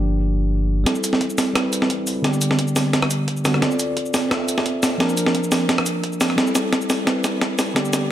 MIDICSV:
0, 0, Header, 1, 4, 480
1, 0, Start_track
1, 0, Key_signature, 0, "minor"
1, 0, Tempo, 344828
1, 1205, Time_signature, 4, 2, 24, 8
1, 11297, End_track
2, 0, Start_track
2, 0, Title_t, "Tine electric piano"
2, 0, Program_c, 0, 4
2, 0, Control_c, 0, 64, 127
2, 0, Note_on_c, 0, 53, 72
2, 0, Note_on_c, 0, 58, 70
2, 0, Note_on_c, 0, 62, 69
2, 0, Note_on_c, 0, 67, 81
2, 1161, Note_off_c, 0, 53, 0
2, 1168, Note_on_c, 0, 55, 70
2, 1172, Note_off_c, 0, 58, 0
2, 1183, Note_off_c, 0, 62, 0
2, 1190, Note_on_c, 0, 60, 63
2, 1195, Note_off_c, 0, 67, 0
2, 1214, Note_on_c, 0, 64, 69
2, 1223, Control_c, 0, 64, 0
2, 1236, Note_on_c, 0, 69, 83
2, 1458, Control_c, 0, 64, 127
2, 2112, Note_off_c, 0, 55, 0
2, 2129, Note_on_c, 0, 55, 70
2, 2130, Note_off_c, 0, 60, 0
2, 2142, Note_off_c, 0, 64, 0
2, 2153, Note_on_c, 0, 60, 66
2, 2154, Note_off_c, 0, 69, 0
2, 2175, Note_on_c, 0, 64, 65
2, 2198, Note_on_c, 0, 71, 79
2, 3080, Note_off_c, 0, 55, 0
2, 3087, Note_on_c, 0, 50, 90
2, 3092, Note_off_c, 0, 60, 0
2, 3103, Note_off_c, 0, 64, 0
2, 3112, Note_on_c, 0, 55, 80
2, 3115, Note_off_c, 0, 71, 0
2, 3134, Note_on_c, 0, 59, 84
2, 3142, Control_c, 0, 64, 0
2, 3156, Note_on_c, 0, 67, 97
2, 3409, Control_c, 0, 64, 127
2, 4279, Note_off_c, 0, 50, 0
2, 4291, Note_off_c, 0, 55, 0
2, 4303, Note_off_c, 0, 59, 0
2, 4313, Note_off_c, 0, 67, 0
2, 4787, Note_on_c, 0, 50, 85
2, 4798, Note_on_c, 0, 55, 76
2, 4809, Note_on_c, 0, 59, 74
2, 4820, Note_on_c, 0, 66, 89
2, 5009, Note_off_c, 0, 50, 0
2, 5012, Note_on_c, 0, 60, 74
2, 5015, Note_off_c, 0, 55, 0
2, 5020, Note_off_c, 0, 59, 0
2, 5026, Note_off_c, 0, 66, 0
2, 5035, Note_on_c, 0, 65, 69
2, 5057, Note_on_c, 0, 69, 65
2, 5061, Control_c, 0, 64, 0
2, 5080, Note_on_c, 0, 74, 82
2, 5267, Control_c, 0, 64, 127
2, 5955, Note_off_c, 0, 60, 0
2, 5972, Note_on_c, 0, 60, 75
2, 5973, Note_off_c, 0, 65, 0
2, 5984, Note_off_c, 0, 69, 0
2, 5995, Note_on_c, 0, 65, 62
2, 5996, Note_off_c, 0, 74, 0
2, 6017, Note_on_c, 0, 69, 67
2, 6041, Note_on_c, 0, 76, 82
2, 6922, Note_off_c, 0, 60, 0
2, 6927, Note_on_c, 0, 53, 93
2, 6933, Note_off_c, 0, 65, 0
2, 6944, Note_off_c, 0, 69, 0
2, 6952, Note_on_c, 0, 58, 83
2, 6956, Note_off_c, 0, 76, 0
2, 6975, Note_on_c, 0, 62, 82
2, 6985, Control_c, 0, 64, 0
2, 6998, Note_on_c, 0, 70, 99
2, 7185, Control_c, 0, 64, 127
2, 8119, Note_off_c, 0, 53, 0
2, 8132, Note_off_c, 0, 58, 0
2, 8143, Note_off_c, 0, 62, 0
2, 8154, Note_off_c, 0, 70, 0
2, 8850, Note_on_c, 0, 55, 76
2, 8873, Note_on_c, 0, 60, 70
2, 8895, Note_on_c, 0, 64, 73
2, 8906, Control_c, 0, 64, 0
2, 8918, Note_on_c, 0, 69, 83
2, 9166, Control_c, 0, 64, 127
2, 9790, Note_off_c, 0, 55, 0
2, 9807, Note_on_c, 0, 55, 71
2, 9812, Note_off_c, 0, 60, 0
2, 9823, Note_off_c, 0, 64, 0
2, 9830, Note_on_c, 0, 60, 68
2, 9835, Note_off_c, 0, 69, 0
2, 9854, Note_on_c, 0, 64, 67
2, 9876, Note_on_c, 0, 71, 75
2, 10759, Note_off_c, 0, 55, 0
2, 10770, Note_on_c, 0, 50, 90
2, 10771, Note_off_c, 0, 60, 0
2, 10782, Note_off_c, 0, 64, 0
2, 10792, Note_on_c, 0, 55, 86
2, 10794, Note_off_c, 0, 71, 0
2, 10815, Note_on_c, 0, 59, 85
2, 10821, Control_c, 0, 64, 0
2, 10839, Note_on_c, 0, 67, 102
2, 11050, Control_c, 0, 64, 127
2, 11297, Note_off_c, 0, 50, 0
2, 11297, Note_off_c, 0, 55, 0
2, 11297, Note_off_c, 0, 59, 0
2, 11297, Note_off_c, 0, 67, 0
2, 11297, End_track
3, 0, Start_track
3, 0, Title_t, "Sub bass"
3, 0, Program_c, 1, 38
3, 0, Note_on_c, 1, 31, 84
3, 1182, Note_off_c, 1, 31, 0
3, 1203, Note_on_c, 1, 33, 97
3, 1319, Note_off_c, 1, 33, 0
3, 1683, Note_on_c, 1, 33, 95
3, 1799, Note_off_c, 1, 33, 0
3, 2530, Note_on_c, 1, 33, 95
3, 2880, Note_on_c, 1, 38, 101
3, 2901, Note_off_c, 1, 33, 0
3, 3100, Note_off_c, 1, 38, 0
3, 3124, Note_on_c, 1, 28, 97
3, 3240, Note_off_c, 1, 28, 0
3, 3604, Note_on_c, 1, 28, 95
3, 3720, Note_off_c, 1, 28, 0
3, 4565, Note_on_c, 1, 31, 84
3, 4680, Note_off_c, 1, 31, 0
3, 5524, Note_on_c, 1, 26, 101
3, 5640, Note_off_c, 1, 26, 0
3, 6372, Note_on_c, 1, 26, 90
3, 6725, Note_on_c, 1, 31, 104
3, 6745, Note_off_c, 1, 26, 0
3, 6942, Note_off_c, 1, 31, 0
3, 7445, Note_on_c, 1, 31, 100
3, 7560, Note_off_c, 1, 31, 0
3, 7925, Note_on_c, 1, 36, 97
3, 8040, Note_off_c, 1, 36, 0
3, 8164, Note_on_c, 1, 26, 83
3, 8646, Note_on_c, 1, 38, 103
3, 8666, Note_off_c, 1, 26, 0
3, 8863, Note_off_c, 1, 38, 0
3, 8885, Note_on_c, 1, 33, 99
3, 9000, Note_off_c, 1, 33, 0
3, 9364, Note_on_c, 1, 33, 101
3, 9480, Note_off_c, 1, 33, 0
3, 10210, Note_on_c, 1, 33, 94
3, 10562, Note_on_c, 1, 38, 105
3, 10583, Note_off_c, 1, 33, 0
3, 10781, Note_off_c, 1, 38, 0
3, 11297, End_track
4, 0, Start_track
4, 0, Title_t, "Drums"
4, 1203, Note_on_c, 9, 36, 94
4, 1203, Note_on_c, 9, 38, 45
4, 1203, Note_on_c, 9, 42, 79
4, 1331, Note_on_c, 9, 69, 24
4, 1342, Note_off_c, 9, 36, 0
4, 1342, Note_off_c, 9, 38, 0
4, 1342, Note_off_c, 9, 42, 0
4, 1445, Note_off_c, 9, 69, 0
4, 1445, Note_on_c, 9, 42, 90
4, 1445, Note_on_c, 9, 69, 56
4, 1571, Note_on_c, 9, 38, 41
4, 1584, Note_off_c, 9, 42, 0
4, 1584, Note_off_c, 9, 69, 0
4, 1682, Note_on_c, 9, 42, 76
4, 1683, Note_on_c, 9, 36, 90
4, 1711, Note_off_c, 9, 38, 0
4, 1811, Note_on_c, 9, 69, 26
4, 1822, Note_off_c, 9, 36, 0
4, 1822, Note_off_c, 9, 42, 0
4, 1924, Note_off_c, 9, 69, 0
4, 1924, Note_on_c, 9, 38, 49
4, 1924, Note_on_c, 9, 46, 73
4, 1924, Note_on_c, 9, 69, 53
4, 2063, Note_off_c, 9, 38, 0
4, 2063, Note_off_c, 9, 46, 0
4, 2063, Note_off_c, 9, 69, 0
4, 2163, Note_on_c, 9, 36, 93
4, 2164, Note_on_c, 9, 37, 54
4, 2164, Note_on_c, 9, 38, 49
4, 2164, Note_on_c, 9, 42, 82
4, 2303, Note_off_c, 9, 36, 0
4, 2303, Note_off_c, 9, 37, 0
4, 2303, Note_off_c, 9, 38, 0
4, 2303, Note_off_c, 9, 42, 0
4, 2404, Note_on_c, 9, 42, 95
4, 2404, Note_on_c, 9, 69, 55
4, 2534, Note_on_c, 9, 38, 43
4, 2544, Note_off_c, 9, 42, 0
4, 2544, Note_off_c, 9, 69, 0
4, 2644, Note_on_c, 9, 36, 95
4, 2645, Note_on_c, 9, 42, 80
4, 2673, Note_off_c, 9, 38, 0
4, 2783, Note_off_c, 9, 36, 0
4, 2784, Note_off_c, 9, 42, 0
4, 2883, Note_on_c, 9, 46, 71
4, 2883, Note_on_c, 9, 69, 55
4, 3022, Note_off_c, 9, 46, 0
4, 3022, Note_off_c, 9, 69, 0
4, 3123, Note_on_c, 9, 36, 95
4, 3123, Note_on_c, 9, 38, 47
4, 3123, Note_on_c, 9, 42, 74
4, 3251, Note_on_c, 9, 69, 24
4, 3262, Note_off_c, 9, 36, 0
4, 3262, Note_off_c, 9, 38, 0
4, 3262, Note_off_c, 9, 42, 0
4, 3361, Note_off_c, 9, 69, 0
4, 3361, Note_on_c, 9, 42, 89
4, 3361, Note_on_c, 9, 69, 57
4, 3491, Note_on_c, 9, 38, 43
4, 3500, Note_off_c, 9, 42, 0
4, 3500, Note_off_c, 9, 69, 0
4, 3600, Note_on_c, 9, 42, 75
4, 3604, Note_on_c, 9, 36, 94
4, 3630, Note_off_c, 9, 38, 0
4, 3729, Note_on_c, 9, 69, 27
4, 3739, Note_off_c, 9, 42, 0
4, 3743, Note_off_c, 9, 36, 0
4, 3843, Note_off_c, 9, 69, 0
4, 3843, Note_on_c, 9, 38, 52
4, 3843, Note_on_c, 9, 46, 75
4, 3843, Note_on_c, 9, 69, 54
4, 3982, Note_off_c, 9, 38, 0
4, 3982, Note_off_c, 9, 46, 0
4, 3982, Note_off_c, 9, 69, 0
4, 4084, Note_on_c, 9, 36, 90
4, 4084, Note_on_c, 9, 38, 57
4, 4084, Note_on_c, 9, 42, 77
4, 4210, Note_on_c, 9, 37, 60
4, 4223, Note_off_c, 9, 36, 0
4, 4223, Note_off_c, 9, 38, 0
4, 4223, Note_off_c, 9, 42, 0
4, 4324, Note_on_c, 9, 42, 91
4, 4324, Note_on_c, 9, 69, 59
4, 4350, Note_off_c, 9, 37, 0
4, 4463, Note_off_c, 9, 42, 0
4, 4463, Note_off_c, 9, 69, 0
4, 4563, Note_on_c, 9, 42, 76
4, 4564, Note_on_c, 9, 36, 96
4, 4691, Note_on_c, 9, 69, 25
4, 4702, Note_off_c, 9, 42, 0
4, 4703, Note_off_c, 9, 36, 0
4, 4804, Note_off_c, 9, 69, 0
4, 4804, Note_on_c, 9, 37, 37
4, 4804, Note_on_c, 9, 38, 57
4, 4804, Note_on_c, 9, 46, 72
4, 4804, Note_on_c, 9, 69, 55
4, 4931, Note_off_c, 9, 37, 0
4, 4931, Note_on_c, 9, 37, 34
4, 4943, Note_off_c, 9, 38, 0
4, 4943, Note_off_c, 9, 46, 0
4, 4943, Note_off_c, 9, 69, 0
4, 5042, Note_on_c, 9, 38, 57
4, 5042, Note_on_c, 9, 42, 70
4, 5044, Note_on_c, 9, 36, 98
4, 5070, Note_off_c, 9, 37, 0
4, 5172, Note_on_c, 9, 69, 26
4, 5181, Note_off_c, 9, 38, 0
4, 5181, Note_off_c, 9, 42, 0
4, 5183, Note_off_c, 9, 36, 0
4, 5282, Note_off_c, 9, 69, 0
4, 5282, Note_on_c, 9, 42, 88
4, 5282, Note_on_c, 9, 69, 55
4, 5421, Note_off_c, 9, 42, 0
4, 5421, Note_off_c, 9, 69, 0
4, 5522, Note_on_c, 9, 42, 72
4, 5524, Note_on_c, 9, 36, 94
4, 5651, Note_on_c, 9, 69, 27
4, 5661, Note_off_c, 9, 42, 0
4, 5663, Note_off_c, 9, 36, 0
4, 5763, Note_off_c, 9, 69, 0
4, 5763, Note_on_c, 9, 38, 63
4, 5763, Note_on_c, 9, 46, 82
4, 5763, Note_on_c, 9, 69, 55
4, 5902, Note_off_c, 9, 38, 0
4, 5902, Note_off_c, 9, 46, 0
4, 5902, Note_off_c, 9, 69, 0
4, 6002, Note_on_c, 9, 37, 56
4, 6002, Note_on_c, 9, 38, 63
4, 6002, Note_on_c, 9, 42, 75
4, 6004, Note_on_c, 9, 36, 94
4, 6141, Note_off_c, 9, 37, 0
4, 6141, Note_off_c, 9, 38, 0
4, 6141, Note_off_c, 9, 42, 0
4, 6143, Note_off_c, 9, 36, 0
4, 6243, Note_on_c, 9, 42, 88
4, 6243, Note_on_c, 9, 69, 54
4, 6371, Note_on_c, 9, 38, 53
4, 6382, Note_off_c, 9, 42, 0
4, 6382, Note_off_c, 9, 69, 0
4, 6483, Note_on_c, 9, 42, 76
4, 6484, Note_on_c, 9, 36, 92
4, 6511, Note_off_c, 9, 38, 0
4, 6622, Note_off_c, 9, 42, 0
4, 6623, Note_off_c, 9, 36, 0
4, 6723, Note_on_c, 9, 37, 35
4, 6723, Note_on_c, 9, 38, 60
4, 6723, Note_on_c, 9, 46, 79
4, 6723, Note_on_c, 9, 69, 56
4, 6862, Note_off_c, 9, 37, 0
4, 6862, Note_off_c, 9, 38, 0
4, 6862, Note_off_c, 9, 46, 0
4, 6862, Note_off_c, 9, 69, 0
4, 6963, Note_on_c, 9, 38, 66
4, 6963, Note_on_c, 9, 42, 70
4, 6964, Note_on_c, 9, 36, 93
4, 7091, Note_on_c, 9, 69, 26
4, 7102, Note_off_c, 9, 38, 0
4, 7102, Note_off_c, 9, 42, 0
4, 7103, Note_off_c, 9, 36, 0
4, 7202, Note_off_c, 9, 69, 0
4, 7202, Note_on_c, 9, 42, 86
4, 7202, Note_on_c, 9, 69, 57
4, 7329, Note_on_c, 9, 38, 58
4, 7341, Note_off_c, 9, 42, 0
4, 7341, Note_off_c, 9, 69, 0
4, 7442, Note_on_c, 9, 42, 72
4, 7444, Note_on_c, 9, 36, 98
4, 7468, Note_off_c, 9, 38, 0
4, 7570, Note_on_c, 9, 69, 28
4, 7581, Note_off_c, 9, 42, 0
4, 7584, Note_off_c, 9, 36, 0
4, 7681, Note_off_c, 9, 69, 0
4, 7681, Note_on_c, 9, 38, 65
4, 7681, Note_on_c, 9, 46, 82
4, 7681, Note_on_c, 9, 69, 58
4, 7820, Note_off_c, 9, 38, 0
4, 7820, Note_off_c, 9, 46, 0
4, 7820, Note_off_c, 9, 69, 0
4, 7921, Note_on_c, 9, 38, 66
4, 7921, Note_on_c, 9, 42, 76
4, 7925, Note_on_c, 9, 36, 97
4, 8049, Note_on_c, 9, 37, 54
4, 8060, Note_off_c, 9, 38, 0
4, 8060, Note_off_c, 9, 42, 0
4, 8064, Note_off_c, 9, 36, 0
4, 8159, Note_on_c, 9, 42, 85
4, 8159, Note_on_c, 9, 69, 56
4, 8189, Note_off_c, 9, 37, 0
4, 8298, Note_off_c, 9, 42, 0
4, 8298, Note_off_c, 9, 69, 0
4, 8401, Note_on_c, 9, 42, 76
4, 8404, Note_on_c, 9, 36, 99
4, 8531, Note_on_c, 9, 69, 26
4, 8540, Note_off_c, 9, 42, 0
4, 8544, Note_off_c, 9, 36, 0
4, 8642, Note_off_c, 9, 69, 0
4, 8642, Note_on_c, 9, 37, 34
4, 8642, Note_on_c, 9, 38, 70
4, 8642, Note_on_c, 9, 46, 80
4, 8642, Note_on_c, 9, 69, 58
4, 8769, Note_off_c, 9, 37, 0
4, 8769, Note_on_c, 9, 37, 32
4, 8781, Note_off_c, 9, 38, 0
4, 8781, Note_off_c, 9, 46, 0
4, 8781, Note_off_c, 9, 69, 0
4, 8880, Note_on_c, 9, 38, 74
4, 8880, Note_on_c, 9, 42, 76
4, 8884, Note_on_c, 9, 36, 92
4, 8908, Note_off_c, 9, 37, 0
4, 9010, Note_on_c, 9, 69, 26
4, 9019, Note_off_c, 9, 38, 0
4, 9019, Note_off_c, 9, 42, 0
4, 9023, Note_off_c, 9, 36, 0
4, 9121, Note_off_c, 9, 69, 0
4, 9121, Note_on_c, 9, 38, 72
4, 9121, Note_on_c, 9, 42, 87
4, 9121, Note_on_c, 9, 69, 59
4, 9261, Note_off_c, 9, 38, 0
4, 9261, Note_off_c, 9, 42, 0
4, 9261, Note_off_c, 9, 69, 0
4, 9362, Note_on_c, 9, 38, 68
4, 9362, Note_on_c, 9, 42, 70
4, 9363, Note_on_c, 9, 36, 102
4, 9489, Note_on_c, 9, 69, 27
4, 9501, Note_off_c, 9, 38, 0
4, 9501, Note_off_c, 9, 42, 0
4, 9502, Note_off_c, 9, 36, 0
4, 9603, Note_off_c, 9, 69, 0
4, 9603, Note_on_c, 9, 38, 81
4, 9603, Note_on_c, 9, 46, 82
4, 9603, Note_on_c, 9, 69, 58
4, 9742, Note_off_c, 9, 38, 0
4, 9742, Note_off_c, 9, 46, 0
4, 9742, Note_off_c, 9, 69, 0
4, 9842, Note_on_c, 9, 38, 78
4, 9842, Note_on_c, 9, 42, 77
4, 9843, Note_on_c, 9, 36, 96
4, 9981, Note_off_c, 9, 38, 0
4, 9981, Note_off_c, 9, 42, 0
4, 9982, Note_off_c, 9, 36, 0
4, 10081, Note_on_c, 9, 38, 78
4, 10081, Note_on_c, 9, 42, 89
4, 10081, Note_on_c, 9, 69, 59
4, 10220, Note_off_c, 9, 38, 0
4, 10220, Note_off_c, 9, 42, 0
4, 10220, Note_off_c, 9, 69, 0
4, 10321, Note_on_c, 9, 38, 78
4, 10321, Note_on_c, 9, 42, 74
4, 10323, Note_on_c, 9, 36, 102
4, 10461, Note_off_c, 9, 38, 0
4, 10461, Note_off_c, 9, 42, 0
4, 10462, Note_off_c, 9, 36, 0
4, 10561, Note_on_c, 9, 38, 83
4, 10561, Note_on_c, 9, 46, 83
4, 10561, Note_on_c, 9, 69, 59
4, 10700, Note_off_c, 9, 38, 0
4, 10700, Note_off_c, 9, 46, 0
4, 10700, Note_off_c, 9, 69, 0
4, 10802, Note_on_c, 9, 36, 101
4, 10802, Note_on_c, 9, 38, 79
4, 10802, Note_on_c, 9, 42, 77
4, 10931, Note_on_c, 9, 69, 26
4, 10941, Note_off_c, 9, 38, 0
4, 10941, Note_off_c, 9, 42, 0
4, 10942, Note_off_c, 9, 36, 0
4, 11043, Note_off_c, 9, 69, 0
4, 11043, Note_on_c, 9, 38, 83
4, 11043, Note_on_c, 9, 42, 92
4, 11043, Note_on_c, 9, 69, 62
4, 11182, Note_off_c, 9, 38, 0
4, 11182, Note_off_c, 9, 42, 0
4, 11182, Note_off_c, 9, 69, 0
4, 11297, End_track
0, 0, End_of_file